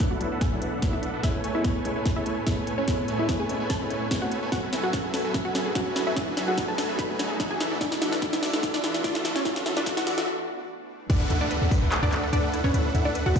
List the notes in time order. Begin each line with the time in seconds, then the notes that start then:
Already playing: D2 B2 F#3 E4, riser
0.00 kick, snare, closed hi-hat
0.11 D4 F#4 A4 B4 E5 F#5
0.20 F#3 A3 B3 E4, closed hi-hat
0.32 D4 A4 B4 E5 F#5
0.41 G#4 G#5, kick, snare, closed hi-hat
0.51 F#3 A3 B3 D4 E4 A4 B4 E5 F#5
0.62 closed hi-hat
0.81 F#3 A3 B3 E4 A4 B4 E5, kick, snare, closed hi-hat
0.93 E4 E5
1.03 closed hi-hat
1.14 D4 A4 B4 E5 F#5
1.22 A2 G#3 A3 B3 C#4 E4 A4 B4 C#5 E5, kick, snare, closed hi-hat
1.44 A3 A4 B4 C#5 G#5, closed hi-hat
1.54 G#3 B3 C#4 E4 E5
1.64 kick, snare, closed hi-hat
1.75 A3 A4 B4 C#5 G#5
1.84 G#3 B3 C#4 E4, closed hi-hat
1.96 A3 A4 B4 C#5 G#5
2.06 kick, snare, closed hi-hat
2.15 G#3 A3 B3 C#4 E4 A4 B4 C#5 E5 G#5
2.26 closed hi-hat
2.46 G#3 A3 B3 C#4 E4 A4 B4 C#5 E5 G#5, kick, snare, closed hi-hat
2.67 closed hi-hat
2.78 A3 C#4 A4 B4 C#5 G#5
2.87 G#3 A3 B3 C#4 E4 A4 C#5, kick, snare, closed hi-hat
3.08 A3 A4 B4 C#5 G#5, closed hi-hat
3.18 G#3 B3 C#4 E4 E5
3.29 kick, snare, closed hi-hat
3.40 A3 G#4 A4 B4 C#5 G#5
3.48 G#3 B3 C#4 E4, closed hi-hat
3.60 A3 A4 B4 C#5 G#5
3.70 A4 A5, kick, snare, closed hi-hat
3.80 G#3 A3 B3 C#4 E4 A4 B4 C#5 G#5
3.90 closed hi-hat
4.10 G#3 A3 B3 C#4 E4 A4 B4 C#5, kick, snare, closed hi-hat
4.22 F#4 F#5
4.32 closed hi-hat
4.42 A3 A4 B4 C#5 G#5
4.52 F#2 E3 F#3 A3 E4 F#4 G#4 A4 B4 F#5, kick, snare, closed hi-hat
4.63 A4
4.73 F#3 E4 F#4 A4 B4 E5 G#5, snare, closed hi-hat
4.83 F#4 G#4 F#5
4.93 A4, kick, snare, closed hi-hat
5.04 F#3 F#4 G#4 A4 B4 E5 G#5
5.14 A4, snare, open hi-hat
5.24 F#3 F#4 A4 B4 E5 G#5
5.34 A4, kick, snare, closed hi-hat
5.45 F#3 F#4 A4 B4 E5 F#5 G#5
5.55 G#4, snare, closed hi-hat
5.66 G#4
5.75 F#3 F#4 A4 B4 E5 F#5 G#5, kick, snare, closed hi-hat
5.86 F#4
5.96 E4, snare, closed hi-hat
6.07 F#3 E4 F#4 A4 B4 E5 G#5
6.16 F#3 E4 F#4 E5, kick, snare, closed hi-hat
6.27 A4
6.37 F#3 E4 F#4 A4 B4 E5 G#5, snare, closed hi-hat
6.48 F#4 G#4 F#5
6.57 A4, kick, snare, closed hi-hat
6.68 F#3 F#4 G#4 A4 B4 E5 G#5 A5
6.78 A4, snare, open hi-hat
6.89 F#3 F#4 A4 B4 E5 G#5
6.99 A4 B4 B5, kick, snare, closed hi-hat
7.09 F#3 F#4 A4 B4 E5 G#5
7.19 G#4, snare, closed hi-hat
7.30 G#4
7.40 E3 D4 F#4 A4 E5, kick, snare, closed hi-hat
7.51 F#4 G#4 G#5
7.60 E2 D4 E4, snare, closed hi-hat
7.71 E3 D4 F#4 A4 D5 E5
7.81 E3 D4 E4 F#4 D5 E5, kick, snare, closed hi-hat
7.92 D5, snare
8.01 E3 D4 E4 F#4 A4 E5, snare, closed hi-hat
8.12 D4 B4 D5, snare
8.22 D5, kick, snare, closed hi-hat
8.33 E3 D4 F#4 A4 B4 E5, snare
8.43 D5, snare, open hi-hat
8.53 E3 D4 F#4 A4 D5 E5, snare
8.63 D5, kick, snare, closed hi-hat
8.74 E3 D4 F#4 A4 D5 E5, snare
8.84 B4, snare, closed hi-hat
8.94 B4, snare
9.04 E3 D4 F#4 A4 D5 E5, kick, snare, closed hi-hat
9.15 A4, snare
9.25 E4, snare, closed hi-hat
9.36 E3 C#4 D4 F#4 A4 C#5 D5 E5, snare
9.45 E3 D4 E4 A4 E5, kick, snare, closed hi-hat
9.56 D5, snare
9.66 E3 D4 E4 F#4 A4 E5, snare, closed hi-hat
9.77 D4 B4 D5, snare
9.86 D5, kick, snare, closed hi-hat
9.97 E3 D4 F#4 A4 B4 E5 F#5, snare
10.07 D5, snare, open hi-hat
10.18 E3 D4 F#4 A4 D5 E5, snare
11.10 D2 D4 E4 A4 B4 D5 E5 F#5, kick, closed hi-hat, crash, downlifter
11.21 B4
11.30 D2 D4 E4 A4 B4 E5 F#5, closed hi-hat
11.41 D4 A4 D5
11.51 B4, closed hi-hat
11.62 D2 D4 A4 B4 E5 F#5
11.71 B4, kick, open hi-hat
11.82 D2 D4 A4 B4 E5 F#5
11.92 B4, clap, closed hi-hat
12.03 D2 D4 A4 B4 D5 E5 F#5
12.12 A4, clap, closed hi-hat
12.23 A4
12.33 D2 D4 A4 B4 D5 E5 F#5, closed hi-hat
12.44 F#4
12.53 E4, closed hi-hat
12.64 D2 C#4 D4 A4 B4 C#5 E5 F#5
12.74 D2 D4 E4 A4 B4 E5 F#5, closed hi-hat
12.85 B4
12.95 D2 D4 E4 A4 B4 E5 F#5, closed hi-hat
13.05 D4 A4 D5
13.15 B4, closed hi-hat
13.26 D2 D4 F#4 A4 B4 E5 F#5
13.36 B4, kick, open hi-hat